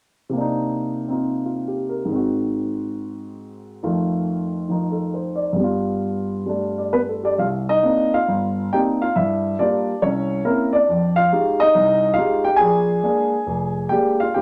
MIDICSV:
0, 0, Header, 1, 2, 480
1, 0, Start_track
1, 0, Tempo, 448096
1, 364, Time_signature, 4, 2, 24, 8
1, 1321, Tempo, 434783
1, 6121, Tempo, 449102
1, 9481, Tempo, 431344
1, 13801, Tempo, 441826
1, 15768, End_track
2, 0, Start_track
2, 0, Title_t, "Grand piano"
2, 0, Program_c, 0, 0
2, 315, Note_on_c, 0, 48, 43
2, 353, Note_on_c, 0, 58, 38
2, 397, Note_on_c, 0, 62, 38
2, 434, Note_on_c, 0, 63, 50
2, 1159, Note_on_c, 0, 60, 33
2, 1167, Note_off_c, 0, 63, 0
2, 1183, Note_on_c, 0, 63, 34
2, 1198, Note_on_c, 0, 65, 37
2, 1551, Note_off_c, 0, 65, 0
2, 1568, Note_on_c, 0, 65, 32
2, 1810, Note_on_c, 0, 67, 38
2, 1901, Note_off_c, 0, 65, 0
2, 2049, Note_on_c, 0, 70, 35
2, 2181, Note_off_c, 0, 67, 0
2, 2226, Note_on_c, 0, 44, 46
2, 2258, Note_off_c, 0, 48, 0
2, 2266, Note_on_c, 0, 51, 38
2, 2277, Note_off_c, 0, 58, 0
2, 2278, Note_off_c, 0, 60, 0
2, 2290, Note_off_c, 0, 63, 0
2, 2300, Note_off_c, 0, 62, 0
2, 2303, Note_on_c, 0, 60, 39
2, 2340, Note_on_c, 0, 66, 44
2, 2381, Note_off_c, 0, 70, 0
2, 4166, Note_off_c, 0, 44, 0
2, 4176, Note_off_c, 0, 51, 0
2, 4187, Note_on_c, 0, 41, 44
2, 4193, Note_on_c, 0, 51, 45
2, 4195, Note_on_c, 0, 57, 41
2, 4197, Note_on_c, 0, 65, 50
2, 4204, Note_off_c, 0, 60, 0
2, 4223, Note_off_c, 0, 66, 0
2, 5116, Note_off_c, 0, 51, 0
2, 5133, Note_on_c, 0, 51, 36
2, 5147, Note_on_c, 0, 53, 34
2, 5164, Note_on_c, 0, 63, 40
2, 5388, Note_on_c, 0, 69, 35
2, 5632, Note_on_c, 0, 72, 36
2, 5726, Note_off_c, 0, 69, 0
2, 5871, Note_on_c, 0, 74, 39
2, 6011, Note_off_c, 0, 72, 0
2, 6061, Note_on_c, 0, 43, 44
2, 6100, Note_on_c, 0, 55, 41
2, 6110, Note_off_c, 0, 51, 0
2, 6117, Note_off_c, 0, 41, 0
2, 6117, Note_off_c, 0, 53, 0
2, 6121, Note_off_c, 0, 57, 0
2, 6122, Note_off_c, 0, 65, 0
2, 6125, Note_off_c, 0, 63, 0
2, 6139, Note_on_c, 0, 59, 36
2, 6182, Note_on_c, 0, 65, 48
2, 6213, Note_off_c, 0, 74, 0
2, 7048, Note_off_c, 0, 55, 0
2, 7064, Note_on_c, 0, 55, 35
2, 7080, Note_on_c, 0, 57, 30
2, 7096, Note_on_c, 0, 62, 38
2, 7402, Note_on_c, 0, 74, 37
2, 7549, Note_off_c, 0, 59, 0
2, 7561, Note_on_c, 0, 71, 58
2, 7565, Note_on_c, 0, 59, 45
2, 7636, Note_off_c, 0, 71, 0
2, 7639, Note_off_c, 0, 59, 0
2, 7656, Note_off_c, 0, 74, 0
2, 7733, Note_on_c, 0, 69, 37
2, 7887, Note_off_c, 0, 62, 0
2, 7889, Note_on_c, 0, 67, 42
2, 7903, Note_on_c, 0, 74, 60
2, 7904, Note_on_c, 0, 62, 45
2, 7983, Note_off_c, 0, 69, 0
2, 8023, Note_off_c, 0, 43, 0
2, 8045, Note_off_c, 0, 55, 0
2, 8045, Note_off_c, 0, 74, 0
2, 8046, Note_off_c, 0, 62, 0
2, 8046, Note_off_c, 0, 65, 0
2, 8048, Note_on_c, 0, 36, 53
2, 8053, Note_off_c, 0, 57, 0
2, 8057, Note_on_c, 0, 77, 60
2, 8062, Note_on_c, 0, 65, 49
2, 8129, Note_off_c, 0, 77, 0
2, 8134, Note_off_c, 0, 65, 0
2, 8140, Note_off_c, 0, 67, 0
2, 8378, Note_on_c, 0, 75, 83
2, 8379, Note_on_c, 0, 63, 49
2, 8467, Note_off_c, 0, 36, 0
2, 8527, Note_off_c, 0, 63, 0
2, 8527, Note_on_c, 0, 58, 41
2, 8538, Note_on_c, 0, 60, 37
2, 8538, Note_on_c, 0, 62, 35
2, 8543, Note_on_c, 0, 63, 46
2, 8856, Note_on_c, 0, 77, 71
2, 8857, Note_on_c, 0, 65, 57
2, 8866, Note_off_c, 0, 58, 0
2, 8868, Note_off_c, 0, 75, 0
2, 8871, Note_off_c, 0, 60, 0
2, 8872, Note_off_c, 0, 62, 0
2, 8874, Note_off_c, 0, 63, 0
2, 9010, Note_on_c, 0, 31, 52
2, 9420, Note_off_c, 0, 31, 0
2, 9439, Note_off_c, 0, 65, 0
2, 9439, Note_off_c, 0, 77, 0
2, 9481, Note_on_c, 0, 58, 38
2, 9484, Note_on_c, 0, 79, 74
2, 9485, Note_on_c, 0, 60, 41
2, 9487, Note_on_c, 0, 62, 37
2, 9489, Note_on_c, 0, 63, 50
2, 9495, Note_on_c, 0, 67, 55
2, 9558, Note_off_c, 0, 79, 0
2, 9568, Note_off_c, 0, 67, 0
2, 9806, Note_on_c, 0, 77, 72
2, 9818, Note_on_c, 0, 65, 53
2, 9827, Note_off_c, 0, 58, 0
2, 9829, Note_off_c, 0, 60, 0
2, 9829, Note_off_c, 0, 62, 0
2, 9831, Note_off_c, 0, 63, 0
2, 9955, Note_off_c, 0, 77, 0
2, 9961, Note_off_c, 0, 65, 0
2, 9961, Note_on_c, 0, 76, 66
2, 9965, Note_on_c, 0, 43, 58
2, 9975, Note_on_c, 0, 64, 50
2, 10384, Note_off_c, 0, 43, 0
2, 10411, Note_off_c, 0, 76, 0
2, 10418, Note_off_c, 0, 64, 0
2, 10445, Note_on_c, 0, 74, 68
2, 10454, Note_on_c, 0, 55, 40
2, 10456, Note_on_c, 0, 62, 55
2, 10462, Note_on_c, 0, 58, 37
2, 10462, Note_on_c, 0, 65, 47
2, 10789, Note_off_c, 0, 55, 0
2, 10793, Note_off_c, 0, 58, 0
2, 10793, Note_off_c, 0, 65, 0
2, 10897, Note_off_c, 0, 62, 0
2, 10924, Note_on_c, 0, 73, 76
2, 10926, Note_on_c, 0, 36, 56
2, 10939, Note_off_c, 0, 74, 0
2, 10940, Note_on_c, 0, 61, 60
2, 11343, Note_off_c, 0, 36, 0
2, 11371, Note_off_c, 0, 73, 0
2, 11379, Note_off_c, 0, 61, 0
2, 11399, Note_on_c, 0, 58, 43
2, 11400, Note_on_c, 0, 70, 63
2, 11401, Note_on_c, 0, 60, 39
2, 11405, Note_on_c, 0, 61, 43
2, 11405, Note_on_c, 0, 64, 49
2, 11705, Note_off_c, 0, 70, 0
2, 11708, Note_on_c, 0, 74, 69
2, 11733, Note_on_c, 0, 62, 59
2, 11743, Note_off_c, 0, 58, 0
2, 11745, Note_off_c, 0, 60, 0
2, 11746, Note_off_c, 0, 61, 0
2, 11747, Note_off_c, 0, 64, 0
2, 11888, Note_on_c, 0, 41, 60
2, 12171, Note_off_c, 0, 74, 0
2, 12184, Note_off_c, 0, 62, 0
2, 12191, Note_on_c, 0, 77, 88
2, 12206, Note_on_c, 0, 65, 63
2, 12310, Note_off_c, 0, 41, 0
2, 12360, Note_off_c, 0, 65, 0
2, 12372, Note_on_c, 0, 56, 42
2, 12372, Note_on_c, 0, 63, 39
2, 12373, Note_on_c, 0, 67, 48
2, 12377, Note_on_c, 0, 65, 37
2, 12679, Note_on_c, 0, 75, 98
2, 12688, Note_off_c, 0, 63, 0
2, 12698, Note_off_c, 0, 77, 0
2, 12704, Note_on_c, 0, 63, 66
2, 12711, Note_off_c, 0, 56, 0
2, 12711, Note_off_c, 0, 67, 0
2, 12713, Note_off_c, 0, 65, 0
2, 12847, Note_on_c, 0, 36, 57
2, 13259, Note_off_c, 0, 36, 0
2, 13269, Note_off_c, 0, 75, 0
2, 13278, Note_on_c, 0, 77, 83
2, 13282, Note_off_c, 0, 63, 0
2, 13298, Note_on_c, 0, 65, 58
2, 13322, Note_on_c, 0, 56, 45
2, 13325, Note_on_c, 0, 63, 43
2, 13331, Note_on_c, 0, 67, 52
2, 13597, Note_off_c, 0, 77, 0
2, 13607, Note_off_c, 0, 65, 0
2, 13621, Note_on_c, 0, 79, 81
2, 13623, Note_off_c, 0, 67, 0
2, 13639, Note_on_c, 0, 67, 59
2, 13658, Note_off_c, 0, 56, 0
2, 13660, Note_off_c, 0, 63, 0
2, 13752, Note_on_c, 0, 80, 85
2, 13777, Note_on_c, 0, 68, 62
2, 13786, Note_off_c, 0, 67, 0
2, 13791, Note_on_c, 0, 34, 59
2, 13793, Note_off_c, 0, 79, 0
2, 14206, Note_off_c, 0, 34, 0
2, 14264, Note_on_c, 0, 56, 41
2, 14267, Note_on_c, 0, 62, 48
2, 14271, Note_on_c, 0, 58, 39
2, 14603, Note_off_c, 0, 56, 0
2, 14605, Note_off_c, 0, 62, 0
2, 14607, Note_off_c, 0, 58, 0
2, 14733, Note_on_c, 0, 29, 56
2, 15158, Note_off_c, 0, 29, 0
2, 15175, Note_off_c, 0, 68, 0
2, 15197, Note_on_c, 0, 79, 75
2, 15215, Note_on_c, 0, 56, 43
2, 15225, Note_on_c, 0, 58, 36
2, 15225, Note_on_c, 0, 67, 60
2, 15231, Note_on_c, 0, 62, 44
2, 15250, Note_off_c, 0, 80, 0
2, 15519, Note_off_c, 0, 79, 0
2, 15531, Note_on_c, 0, 77, 74
2, 15534, Note_off_c, 0, 67, 0
2, 15551, Note_on_c, 0, 65, 58
2, 15568, Note_off_c, 0, 56, 0
2, 15573, Note_off_c, 0, 58, 0
2, 15576, Note_off_c, 0, 62, 0
2, 15688, Note_on_c, 0, 79, 69
2, 15702, Note_off_c, 0, 65, 0
2, 15704, Note_on_c, 0, 39, 51
2, 15704, Note_on_c, 0, 67, 60
2, 15709, Note_off_c, 0, 77, 0
2, 15765, Note_off_c, 0, 79, 0
2, 15768, Note_off_c, 0, 39, 0
2, 15768, Note_off_c, 0, 67, 0
2, 15768, End_track
0, 0, End_of_file